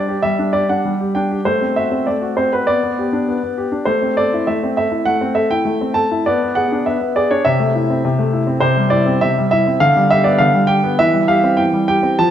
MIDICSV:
0, 0, Header, 1, 2, 480
1, 0, Start_track
1, 0, Tempo, 608519
1, 1141, Time_signature, 4, 2, 24, 8
1, 3058, Tempo, 594648
1, 9862, End_track
2, 0, Start_track
2, 0, Title_t, "Grand piano"
2, 0, Program_c, 0, 0
2, 0, Note_on_c, 0, 55, 35
2, 0, Note_on_c, 0, 62, 35
2, 0, Note_on_c, 0, 74, 63
2, 66, Note_on_c, 0, 67, 39
2, 130, Note_off_c, 0, 62, 0
2, 171, Note_off_c, 0, 55, 0
2, 176, Note_off_c, 0, 74, 0
2, 178, Note_on_c, 0, 76, 75
2, 183, Note_on_c, 0, 55, 47
2, 254, Note_off_c, 0, 67, 0
2, 308, Note_on_c, 0, 62, 38
2, 417, Note_on_c, 0, 74, 65
2, 418, Note_off_c, 0, 76, 0
2, 424, Note_on_c, 0, 67, 39
2, 495, Note_off_c, 0, 62, 0
2, 538, Note_off_c, 0, 74, 0
2, 547, Note_on_c, 0, 78, 57
2, 549, Note_on_c, 0, 62, 36
2, 613, Note_off_c, 0, 67, 0
2, 659, Note_off_c, 0, 55, 0
2, 671, Note_on_c, 0, 55, 43
2, 736, Note_off_c, 0, 62, 0
2, 793, Note_on_c, 0, 67, 37
2, 903, Note_off_c, 0, 78, 0
2, 906, Note_on_c, 0, 79, 55
2, 912, Note_on_c, 0, 62, 40
2, 979, Note_off_c, 0, 67, 0
2, 1038, Note_on_c, 0, 67, 36
2, 1099, Note_off_c, 0, 62, 0
2, 1133, Note_off_c, 0, 55, 0
2, 1145, Note_off_c, 0, 79, 0
2, 1146, Note_on_c, 0, 72, 70
2, 1150, Note_off_c, 0, 67, 0
2, 1152, Note_on_c, 0, 57, 50
2, 1273, Note_on_c, 0, 60, 35
2, 1275, Control_c, 0, 64, 127
2, 1386, Note_off_c, 0, 72, 0
2, 1391, Note_on_c, 0, 76, 64
2, 1402, Note_on_c, 0, 66, 37
2, 1462, Note_off_c, 0, 60, 0
2, 1512, Note_on_c, 0, 60, 39
2, 1586, Note_off_c, 0, 66, 0
2, 1623, Note_off_c, 0, 57, 0
2, 1629, Note_off_c, 0, 76, 0
2, 1630, Note_on_c, 0, 74, 49
2, 1635, Note_on_c, 0, 57, 38
2, 1636, Control_c, 0, 64, 0
2, 1701, Note_off_c, 0, 60, 0
2, 1747, Note_on_c, 0, 66, 39
2, 1867, Note_off_c, 0, 74, 0
2, 1867, Note_on_c, 0, 72, 59
2, 1875, Note_on_c, 0, 60, 39
2, 1937, Note_off_c, 0, 66, 0
2, 1985, Note_off_c, 0, 72, 0
2, 1995, Note_on_c, 0, 71, 55
2, 1998, Note_on_c, 0, 66, 36
2, 2061, Note_off_c, 0, 60, 0
2, 2094, Note_off_c, 0, 57, 0
2, 2105, Note_on_c, 0, 74, 77
2, 2109, Note_off_c, 0, 71, 0
2, 2109, Note_on_c, 0, 59, 50
2, 2110, Note_off_c, 0, 66, 0
2, 2224, Note_off_c, 0, 59, 0
2, 2236, Note_on_c, 0, 59, 41
2, 2273, Control_c, 0, 64, 127
2, 2356, Note_on_c, 0, 67, 42
2, 2422, Note_off_c, 0, 59, 0
2, 2468, Note_on_c, 0, 62, 38
2, 2542, Note_off_c, 0, 67, 0
2, 2591, Control_c, 0, 64, 0
2, 2592, Note_on_c, 0, 59, 46
2, 2658, Note_off_c, 0, 62, 0
2, 2697, Note_off_c, 0, 59, 0
2, 2709, Note_on_c, 0, 59, 37
2, 2822, Note_on_c, 0, 67, 42
2, 2896, Note_off_c, 0, 59, 0
2, 2934, Note_on_c, 0, 62, 39
2, 3011, Note_off_c, 0, 67, 0
2, 3041, Note_on_c, 0, 72, 71
2, 3050, Note_on_c, 0, 57, 51
2, 3055, Note_off_c, 0, 62, 0
2, 3060, Note_off_c, 0, 74, 0
2, 3175, Note_on_c, 0, 60, 38
2, 3223, Control_c, 0, 64, 127
2, 3289, Note_off_c, 0, 72, 0
2, 3295, Note_on_c, 0, 74, 66
2, 3307, Note_on_c, 0, 69, 43
2, 3368, Note_off_c, 0, 60, 0
2, 3428, Note_on_c, 0, 64, 44
2, 3494, Note_off_c, 0, 69, 0
2, 3530, Note_off_c, 0, 57, 0
2, 3536, Note_off_c, 0, 74, 0
2, 3538, Note_on_c, 0, 76, 62
2, 3542, Note_on_c, 0, 57, 42
2, 3545, Control_c, 0, 64, 0
2, 3615, Note_off_c, 0, 64, 0
2, 3668, Note_on_c, 0, 60, 39
2, 3768, Note_off_c, 0, 76, 0
2, 3780, Note_on_c, 0, 76, 68
2, 3787, Note_on_c, 0, 69, 44
2, 3855, Note_off_c, 0, 60, 0
2, 3897, Note_on_c, 0, 64, 38
2, 3975, Note_off_c, 0, 69, 0
2, 4006, Note_off_c, 0, 57, 0
2, 4009, Note_on_c, 0, 78, 81
2, 4018, Note_on_c, 0, 57, 47
2, 4020, Note_off_c, 0, 76, 0
2, 4091, Note_off_c, 0, 64, 0
2, 4136, Note_on_c, 0, 60, 42
2, 4246, Note_on_c, 0, 76, 67
2, 4247, Note_on_c, 0, 69, 42
2, 4256, Note_off_c, 0, 78, 0
2, 4331, Note_off_c, 0, 60, 0
2, 4373, Note_on_c, 0, 79, 73
2, 4374, Note_off_c, 0, 76, 0
2, 4378, Note_on_c, 0, 64, 41
2, 4446, Note_off_c, 0, 69, 0
2, 4479, Note_off_c, 0, 57, 0
2, 4491, Note_on_c, 0, 57, 46
2, 4571, Note_off_c, 0, 64, 0
2, 4620, Note_on_c, 0, 60, 42
2, 4725, Note_on_c, 0, 81, 65
2, 4732, Note_on_c, 0, 69, 40
2, 4737, Note_off_c, 0, 79, 0
2, 4813, Note_off_c, 0, 60, 0
2, 4863, Note_on_c, 0, 64, 43
2, 4929, Note_off_c, 0, 69, 0
2, 4963, Note_off_c, 0, 57, 0
2, 4975, Note_off_c, 0, 81, 0
2, 4983, Note_on_c, 0, 74, 73
2, 4984, Note_off_c, 0, 64, 0
2, 4989, Note_on_c, 0, 59, 58
2, 5107, Note_off_c, 0, 59, 0
2, 5119, Note_on_c, 0, 59, 42
2, 5144, Control_c, 0, 64, 127
2, 5218, Note_on_c, 0, 78, 78
2, 5225, Note_off_c, 0, 74, 0
2, 5228, Note_on_c, 0, 68, 38
2, 5304, Note_off_c, 0, 59, 0
2, 5354, Note_on_c, 0, 62, 44
2, 5419, Note_off_c, 0, 68, 0
2, 5462, Note_off_c, 0, 78, 0
2, 5467, Note_on_c, 0, 76, 57
2, 5473, Control_c, 0, 64, 0
2, 5473, Note_on_c, 0, 59, 43
2, 5541, Note_off_c, 0, 62, 0
2, 5577, Note_off_c, 0, 59, 0
2, 5589, Note_on_c, 0, 59, 40
2, 5706, Note_off_c, 0, 76, 0
2, 5707, Note_on_c, 0, 74, 72
2, 5711, Note_on_c, 0, 68, 41
2, 5779, Note_off_c, 0, 59, 0
2, 5826, Note_off_c, 0, 74, 0
2, 5827, Note_on_c, 0, 62, 44
2, 5827, Note_on_c, 0, 73, 73
2, 5900, Note_off_c, 0, 68, 0
2, 5939, Note_on_c, 0, 76, 80
2, 5946, Note_off_c, 0, 62, 0
2, 5946, Note_off_c, 0, 73, 0
2, 5947, Note_on_c, 0, 48, 62
2, 6062, Note_on_c, 0, 57, 45
2, 6115, Control_c, 0, 64, 127
2, 6187, Note_on_c, 0, 64, 45
2, 6254, Note_off_c, 0, 57, 0
2, 6307, Note_on_c, 0, 60, 41
2, 6375, Note_off_c, 0, 64, 0
2, 6412, Note_off_c, 0, 48, 0
2, 6424, Note_on_c, 0, 48, 51
2, 6430, Control_c, 0, 64, 0
2, 6493, Note_off_c, 0, 60, 0
2, 6539, Note_on_c, 0, 57, 49
2, 6655, Note_on_c, 0, 64, 43
2, 6726, Note_off_c, 0, 57, 0
2, 6765, Note_on_c, 0, 60, 45
2, 6842, Note_off_c, 0, 64, 0
2, 6870, Note_off_c, 0, 48, 0
2, 6874, Note_on_c, 0, 72, 80
2, 6882, Note_on_c, 0, 48, 60
2, 6886, Note_off_c, 0, 60, 0
2, 6886, Note_off_c, 0, 76, 0
2, 7008, Note_on_c, 0, 55, 40
2, 7038, Control_c, 0, 64, 127
2, 7114, Note_on_c, 0, 74, 72
2, 7118, Note_off_c, 0, 72, 0
2, 7121, Note_on_c, 0, 64, 46
2, 7198, Note_off_c, 0, 55, 0
2, 7242, Note_on_c, 0, 60, 50
2, 7315, Note_off_c, 0, 64, 0
2, 7356, Note_off_c, 0, 48, 0
2, 7360, Note_off_c, 0, 74, 0
2, 7366, Note_on_c, 0, 76, 79
2, 7368, Note_on_c, 0, 48, 45
2, 7372, Control_c, 0, 64, 0
2, 7437, Note_off_c, 0, 60, 0
2, 7498, Note_on_c, 0, 55, 45
2, 7594, Note_off_c, 0, 76, 0
2, 7606, Note_on_c, 0, 76, 80
2, 7616, Note_on_c, 0, 64, 48
2, 7685, Note_off_c, 0, 55, 0
2, 7731, Note_on_c, 0, 60, 39
2, 7804, Note_off_c, 0, 64, 0
2, 7834, Note_off_c, 0, 48, 0
2, 7842, Note_on_c, 0, 77, 88
2, 7844, Note_on_c, 0, 50, 59
2, 7847, Note_off_c, 0, 76, 0
2, 7849, Note_off_c, 0, 60, 0
2, 7972, Note_on_c, 0, 55, 48
2, 7985, Control_c, 0, 64, 127
2, 8085, Note_off_c, 0, 77, 0
2, 8086, Note_on_c, 0, 76, 87
2, 8089, Note_on_c, 0, 67, 50
2, 8162, Note_off_c, 0, 55, 0
2, 8195, Note_on_c, 0, 74, 69
2, 8202, Note_on_c, 0, 59, 42
2, 8207, Note_off_c, 0, 76, 0
2, 8281, Note_off_c, 0, 67, 0
2, 8310, Note_off_c, 0, 50, 0
2, 8311, Note_on_c, 0, 77, 79
2, 8322, Note_off_c, 0, 74, 0
2, 8322, Note_on_c, 0, 50, 51
2, 8336, Control_c, 0, 64, 0
2, 8399, Note_off_c, 0, 59, 0
2, 8435, Note_on_c, 0, 55, 45
2, 8542, Note_on_c, 0, 79, 82
2, 8551, Note_on_c, 0, 67, 46
2, 8562, Note_off_c, 0, 77, 0
2, 8636, Note_off_c, 0, 55, 0
2, 8675, Note_on_c, 0, 59, 50
2, 8754, Note_off_c, 0, 67, 0
2, 8794, Note_off_c, 0, 50, 0
2, 8798, Note_off_c, 0, 79, 0
2, 8798, Note_on_c, 0, 76, 92
2, 8804, Note_off_c, 0, 59, 0
2, 8806, Note_on_c, 0, 52, 56
2, 8912, Note_on_c, 0, 55, 39
2, 8957, Control_c, 0, 64, 127
2, 9034, Note_on_c, 0, 77, 70
2, 9035, Note_on_c, 0, 67, 50
2, 9044, Note_off_c, 0, 76, 0
2, 9113, Note_off_c, 0, 55, 0
2, 9161, Note_on_c, 0, 60, 47
2, 9234, Note_off_c, 0, 67, 0
2, 9263, Note_off_c, 0, 52, 0
2, 9267, Note_on_c, 0, 79, 73
2, 9275, Note_on_c, 0, 52, 41
2, 9282, Note_off_c, 0, 77, 0
2, 9302, Control_c, 0, 64, 0
2, 9358, Note_off_c, 0, 60, 0
2, 9399, Note_on_c, 0, 55, 48
2, 9506, Note_off_c, 0, 79, 0
2, 9519, Note_on_c, 0, 79, 80
2, 9524, Note_on_c, 0, 67, 49
2, 9600, Note_off_c, 0, 55, 0
2, 9639, Note_on_c, 0, 60, 45
2, 9724, Note_off_c, 0, 67, 0
2, 9755, Note_off_c, 0, 52, 0
2, 9766, Note_on_c, 0, 81, 86
2, 9768, Note_on_c, 0, 53, 59
2, 9769, Note_off_c, 0, 60, 0
2, 9770, Note_off_c, 0, 79, 0
2, 9862, Note_off_c, 0, 53, 0
2, 9862, Note_off_c, 0, 81, 0
2, 9862, End_track
0, 0, End_of_file